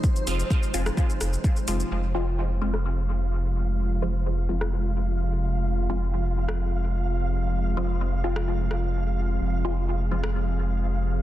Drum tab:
HH |--o---o---o---o-|----------------|----------------|----------------|
SH |xxxxxxxxxxxxxxxx|----------------|----------------|----------------|
SD |-------r--r-----|-------r--------|-------r--------|-------r--------|
BD |o---o---o---o---|----------------|----------------|----------------|

HH |----------------|----------------|
SH |----------------|----------------|
SD |-------r--r-----|-------r--------|
BD |----------------|----------------|